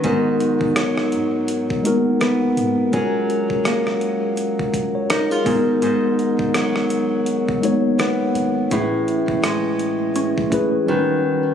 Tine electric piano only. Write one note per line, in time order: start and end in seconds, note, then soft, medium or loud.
0.02 0.95 G#3 medium
0.02 0.96 B3 medium
0.02 0.96 D#4 medium
0.02 0.97 F#4 medium
0.02 0.97 A#4 medium
1.83 2.52 G#3 medium
1.83 1.92 A#3 medium
1.83 2.53 D#4 medium
1.83 2.53 F#4 medium
1.83 2.54 A#4 medium
1.91 2.56 B3 medium
2.92 3.85 G#3 medium
2.92 3.85 C#4 medium
2.92 3.86 F4 medium
2.92 3.86 F#4 medium
2.92 3.87 A#4 medium
4.95 5.09 C#5 medium
5.10 5.30 A#4 medium
5.31 5.65 G#4 medium
5.44 6.62 G#3 medium
5.44 6.63 B3 medium
5.44 6.63 D#4 medium
5.44 6.63 F#4 medium
5.44 6.64 A#4 loud
7.61 8.30 G#3 medium
7.61 7.70 A#3 medium
7.61 8.31 D#4 medium
7.61 8.32 F#4 medium
7.61 8.32 C#5 medium
7.69 8.34 B3 medium
8.70 9.63 A3 medium
8.70 9.63 C#4 medium
8.70 9.64 E4 medium
8.70 9.65 G#4 medium
8.70 9.65 B4 medium
10.50 10.87 A3 medium
10.50 10.86 C#4 medium
10.50 10.88 E4 medium
10.50 10.89 G#4 medium
10.50 10.89 B4 medium
10.86 11.48 G3 medium
10.86 11.48 C#4 medium
10.86 11.49 D#4 medium
10.86 11.49 F#4 medium
10.86 11.50 B4 loud